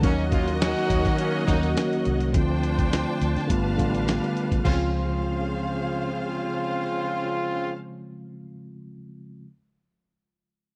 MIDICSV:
0, 0, Header, 1, 7, 480
1, 0, Start_track
1, 0, Key_signature, -5, "major"
1, 0, Tempo, 576923
1, 28, Time_signature, 4, 2, 24, 8
1, 8949, End_track
2, 0, Start_track
2, 0, Title_t, "String section"
2, 0, Program_c, 0, 48
2, 34, Note_on_c, 0, 78, 81
2, 35, Note_on_c, 0, 63, 84
2, 37, Note_on_c, 0, 70, 68
2, 38, Note_on_c, 0, 73, 73
2, 1930, Note_off_c, 0, 78, 0
2, 1931, Note_off_c, 0, 63, 0
2, 1932, Note_off_c, 0, 70, 0
2, 1932, Note_off_c, 0, 73, 0
2, 1950, Note_on_c, 0, 81, 84
2, 1951, Note_on_c, 0, 72, 75
2, 1953, Note_on_c, 0, 65, 78
2, 1953, Note_on_c, 0, 74, 66
2, 2899, Note_off_c, 0, 72, 0
2, 2900, Note_off_c, 0, 65, 0
2, 2900, Note_off_c, 0, 74, 0
2, 2902, Note_on_c, 0, 77, 70
2, 2904, Note_on_c, 0, 71, 62
2, 2905, Note_on_c, 0, 67, 73
2, 3848, Note_off_c, 0, 81, 0
2, 3854, Note_off_c, 0, 77, 0
2, 3855, Note_off_c, 0, 71, 0
2, 3856, Note_off_c, 0, 67, 0
2, 3868, Note_on_c, 0, 77, 79
2, 3869, Note_on_c, 0, 49, 74
2, 3870, Note_on_c, 0, 72, 65
2, 3871, Note_on_c, 0, 68, 65
2, 6419, Note_off_c, 0, 77, 0
2, 6420, Note_off_c, 0, 49, 0
2, 6420, Note_off_c, 0, 72, 0
2, 6421, Note_off_c, 0, 68, 0
2, 8949, End_track
3, 0, Start_track
3, 0, Title_t, "String section"
3, 0, Program_c, 1, 48
3, 31, Note_on_c, 1, 75, 97
3, 33, Note_on_c, 1, 58, 85
3, 34, Note_on_c, 1, 66, 84
3, 1915, Note_off_c, 1, 58, 0
3, 1915, Note_off_c, 1, 75, 0
3, 1916, Note_off_c, 1, 66, 0
3, 1952, Note_on_c, 1, 72, 79
3, 1953, Note_on_c, 1, 79, 89
3, 1956, Note_on_c, 1, 62, 76
3, 2890, Note_off_c, 1, 72, 0
3, 2890, Note_off_c, 1, 79, 0
3, 2892, Note_off_c, 1, 62, 0
3, 2910, Note_on_c, 1, 77, 82
3, 2911, Note_on_c, 1, 62, 73
3, 2913, Note_on_c, 1, 71, 78
3, 3849, Note_off_c, 1, 62, 0
3, 3849, Note_off_c, 1, 77, 0
3, 3850, Note_off_c, 1, 71, 0
3, 3871, Note_on_c, 1, 77, 97
3, 3872, Note_on_c, 1, 61, 85
3, 3872, Note_on_c, 1, 72, 82
3, 6421, Note_off_c, 1, 61, 0
3, 6421, Note_off_c, 1, 72, 0
3, 6421, Note_off_c, 1, 77, 0
3, 8949, End_track
4, 0, Start_track
4, 0, Title_t, "Horn section"
4, 0, Program_c, 2, 61
4, 27, Note_on_c, 2, 58, 90
4, 28, Note_on_c, 2, 54, 98
4, 29, Note_on_c, 2, 61, 107
4, 219, Note_off_c, 2, 58, 0
4, 220, Note_off_c, 2, 54, 0
4, 220, Note_off_c, 2, 61, 0
4, 267, Note_on_c, 2, 58, 75
4, 267, Note_on_c, 2, 61, 79
4, 267, Note_on_c, 2, 65, 88
4, 459, Note_off_c, 2, 58, 0
4, 459, Note_off_c, 2, 61, 0
4, 459, Note_off_c, 2, 65, 0
4, 505, Note_on_c, 2, 66, 94
4, 506, Note_on_c, 2, 61, 85
4, 506, Note_on_c, 2, 63, 90
4, 957, Note_off_c, 2, 61, 0
4, 957, Note_off_c, 2, 66, 0
4, 958, Note_off_c, 2, 63, 0
4, 988, Note_on_c, 2, 58, 69
4, 988, Note_on_c, 2, 61, 78
4, 989, Note_on_c, 2, 54, 77
4, 1179, Note_off_c, 2, 61, 0
4, 1180, Note_off_c, 2, 54, 0
4, 1180, Note_off_c, 2, 58, 0
4, 1227, Note_on_c, 2, 54, 79
4, 1227, Note_on_c, 2, 58, 87
4, 1228, Note_on_c, 2, 63, 94
4, 1419, Note_off_c, 2, 54, 0
4, 1419, Note_off_c, 2, 58, 0
4, 1419, Note_off_c, 2, 63, 0
4, 3869, Note_on_c, 2, 49, 67
4, 3869, Note_on_c, 2, 60, 74
4, 3869, Note_on_c, 2, 65, 78
4, 6420, Note_off_c, 2, 49, 0
4, 6420, Note_off_c, 2, 60, 0
4, 6420, Note_off_c, 2, 65, 0
4, 8949, End_track
5, 0, Start_track
5, 0, Title_t, "Tine electric piano"
5, 0, Program_c, 3, 4
5, 0, Control_c, 3, 64, 127
5, 7, Note_on_c, 3, 51, 84
5, 14, Note_on_c, 3, 54, 89
5, 24, Note_on_c, 3, 58, 78
5, 32, Note_on_c, 3, 61, 80
5, 37, Control_c, 3, 64, 0
5, 38, Note_on_c, 3, 66, 99
5, 177, Control_c, 3, 64, 127
5, 723, Note_off_c, 3, 51, 0
5, 726, Note_off_c, 3, 54, 0
5, 731, Note_off_c, 3, 58, 0
5, 735, Note_off_c, 3, 61, 0
5, 739, Note_off_c, 3, 66, 0
5, 1208, Note_on_c, 3, 51, 84
5, 1217, Note_on_c, 3, 54, 77
5, 1226, Note_on_c, 3, 58, 78
5, 1235, Note_on_c, 3, 61, 82
5, 1240, Note_on_c, 3, 66, 100
5, 1749, Note_off_c, 3, 51, 0
5, 1754, Note_off_c, 3, 54, 0
5, 1759, Note_off_c, 3, 58, 0
5, 1763, Note_off_c, 3, 61, 0
5, 1766, Note_off_c, 3, 66, 0
5, 1931, Note_on_c, 3, 50, 86
5, 1937, Note_on_c, 3, 53, 77
5, 1945, Note_on_c, 3, 57, 80
5, 1952, Note_on_c, 3, 60, 89
5, 1958, Control_c, 3, 64, 0
5, 1962, Note_on_c, 3, 65, 95
5, 2118, Control_c, 3, 64, 127
5, 2644, Note_off_c, 3, 50, 0
5, 2648, Note_off_c, 3, 53, 0
5, 2652, Note_off_c, 3, 57, 0
5, 2655, Note_off_c, 3, 60, 0
5, 2660, Note_off_c, 3, 65, 0
5, 2892, Note_on_c, 3, 50, 93
5, 2899, Note_on_c, 3, 55, 78
5, 2910, Note_on_c, 3, 57, 79
5, 2915, Control_c, 3, 64, 0
5, 2916, Note_on_c, 3, 59, 83
5, 2923, Note_on_c, 3, 65, 92
5, 3073, Control_c, 3, 64, 127
5, 3095, Note_off_c, 3, 50, 0
5, 3098, Note_off_c, 3, 55, 0
5, 3104, Note_off_c, 3, 57, 0
5, 3107, Note_off_c, 3, 59, 0
5, 3110, Note_off_c, 3, 65, 0
5, 3133, Note_on_c, 3, 50, 89
5, 3141, Note_on_c, 3, 55, 75
5, 3149, Note_on_c, 3, 57, 71
5, 3158, Note_on_c, 3, 59, 77
5, 3165, Note_on_c, 3, 65, 90
5, 3672, Note_off_c, 3, 50, 0
5, 3676, Note_off_c, 3, 55, 0
5, 3680, Note_off_c, 3, 57, 0
5, 3685, Note_off_c, 3, 59, 0
5, 3688, Note_off_c, 3, 65, 0
5, 3808, Note_on_c, 3, 49, 83
5, 3839, Note_on_c, 3, 53, 73
5, 3872, Note_on_c, 3, 56, 70
5, 3878, Control_c, 3, 64, 0
5, 3904, Note_on_c, 3, 60, 74
5, 3935, Note_on_c, 3, 65, 86
5, 4022, Control_c, 3, 64, 127
5, 6972, Note_off_c, 3, 49, 0
5, 6987, Note_off_c, 3, 53, 0
5, 7004, Note_off_c, 3, 56, 0
5, 7020, Note_off_c, 3, 60, 0
5, 7035, Note_off_c, 3, 65, 0
5, 7877, Control_c, 3, 64, 0
5, 8949, End_track
6, 0, Start_track
6, 0, Title_t, "Fingered electric bass"
6, 0, Program_c, 4, 33
6, 31, Note_on_c, 4, 39, 96
6, 608, Note_off_c, 4, 39, 0
6, 750, Note_on_c, 4, 39, 84
6, 864, Note_off_c, 4, 39, 0
6, 882, Note_on_c, 4, 51, 96
6, 1191, Note_off_c, 4, 51, 0
6, 1235, Note_on_c, 4, 39, 79
6, 1444, Note_off_c, 4, 39, 0
6, 1718, Note_on_c, 4, 36, 85
6, 1926, Note_off_c, 4, 36, 0
6, 1954, Note_on_c, 4, 38, 105
6, 2529, Note_off_c, 4, 38, 0
6, 2675, Note_on_c, 4, 38, 97
6, 2786, Note_off_c, 4, 38, 0
6, 2801, Note_on_c, 4, 50, 96
6, 2897, Note_off_c, 4, 50, 0
6, 2912, Note_on_c, 4, 31, 91
6, 3123, Note_off_c, 4, 31, 0
6, 3157, Note_on_c, 4, 33, 83
6, 3481, Note_off_c, 4, 33, 0
6, 3874, Note_on_c, 4, 37, 90
6, 7005, Note_off_c, 4, 37, 0
6, 8949, End_track
7, 0, Start_track
7, 0, Title_t, "Drums"
7, 27, Note_on_c, 9, 42, 87
7, 28, Note_on_c, 9, 36, 110
7, 110, Note_off_c, 9, 42, 0
7, 111, Note_off_c, 9, 36, 0
7, 265, Note_on_c, 9, 42, 64
7, 267, Note_on_c, 9, 36, 90
7, 348, Note_off_c, 9, 42, 0
7, 350, Note_off_c, 9, 36, 0
7, 397, Note_on_c, 9, 42, 48
7, 480, Note_off_c, 9, 42, 0
7, 512, Note_on_c, 9, 42, 81
7, 515, Note_on_c, 9, 38, 120
7, 596, Note_off_c, 9, 42, 0
7, 598, Note_off_c, 9, 38, 0
7, 747, Note_on_c, 9, 36, 84
7, 750, Note_on_c, 9, 42, 74
7, 830, Note_off_c, 9, 36, 0
7, 833, Note_off_c, 9, 42, 0
7, 873, Note_on_c, 9, 42, 46
7, 878, Note_on_c, 9, 36, 90
7, 888, Note_on_c, 9, 38, 35
7, 956, Note_off_c, 9, 42, 0
7, 961, Note_off_c, 9, 36, 0
7, 972, Note_off_c, 9, 38, 0
7, 985, Note_on_c, 9, 42, 87
7, 1069, Note_off_c, 9, 42, 0
7, 1230, Note_on_c, 9, 36, 87
7, 1234, Note_on_c, 9, 42, 67
7, 1313, Note_off_c, 9, 36, 0
7, 1317, Note_off_c, 9, 42, 0
7, 1356, Note_on_c, 9, 42, 48
7, 1440, Note_off_c, 9, 42, 0
7, 1471, Note_on_c, 9, 42, 83
7, 1476, Note_on_c, 9, 38, 93
7, 1554, Note_off_c, 9, 42, 0
7, 1560, Note_off_c, 9, 38, 0
7, 1605, Note_on_c, 9, 42, 33
7, 1688, Note_off_c, 9, 42, 0
7, 1709, Note_on_c, 9, 42, 67
7, 1792, Note_off_c, 9, 42, 0
7, 1834, Note_on_c, 9, 42, 55
7, 1917, Note_off_c, 9, 42, 0
7, 1948, Note_on_c, 9, 42, 90
7, 1949, Note_on_c, 9, 36, 111
7, 2031, Note_off_c, 9, 42, 0
7, 2032, Note_off_c, 9, 36, 0
7, 2192, Note_on_c, 9, 42, 68
7, 2275, Note_off_c, 9, 42, 0
7, 2317, Note_on_c, 9, 36, 85
7, 2319, Note_on_c, 9, 42, 47
7, 2400, Note_off_c, 9, 36, 0
7, 2402, Note_off_c, 9, 42, 0
7, 2437, Note_on_c, 9, 42, 81
7, 2440, Note_on_c, 9, 38, 115
7, 2520, Note_off_c, 9, 42, 0
7, 2523, Note_off_c, 9, 38, 0
7, 2675, Note_on_c, 9, 42, 77
7, 2758, Note_off_c, 9, 42, 0
7, 2799, Note_on_c, 9, 42, 41
7, 2815, Note_on_c, 9, 38, 33
7, 2882, Note_off_c, 9, 42, 0
7, 2898, Note_off_c, 9, 38, 0
7, 2909, Note_on_c, 9, 36, 84
7, 2912, Note_on_c, 9, 42, 92
7, 2992, Note_off_c, 9, 36, 0
7, 2996, Note_off_c, 9, 42, 0
7, 3152, Note_on_c, 9, 36, 85
7, 3156, Note_on_c, 9, 42, 67
7, 3235, Note_off_c, 9, 36, 0
7, 3239, Note_off_c, 9, 42, 0
7, 3283, Note_on_c, 9, 42, 49
7, 3366, Note_off_c, 9, 42, 0
7, 3395, Note_on_c, 9, 42, 84
7, 3400, Note_on_c, 9, 38, 99
7, 3478, Note_off_c, 9, 42, 0
7, 3484, Note_off_c, 9, 38, 0
7, 3527, Note_on_c, 9, 42, 31
7, 3610, Note_off_c, 9, 42, 0
7, 3633, Note_on_c, 9, 42, 64
7, 3716, Note_off_c, 9, 42, 0
7, 3757, Note_on_c, 9, 36, 77
7, 3760, Note_on_c, 9, 42, 50
7, 3840, Note_off_c, 9, 36, 0
7, 3843, Note_off_c, 9, 42, 0
7, 3869, Note_on_c, 9, 36, 87
7, 3870, Note_on_c, 9, 49, 74
7, 3952, Note_off_c, 9, 36, 0
7, 3953, Note_off_c, 9, 49, 0
7, 8949, End_track
0, 0, End_of_file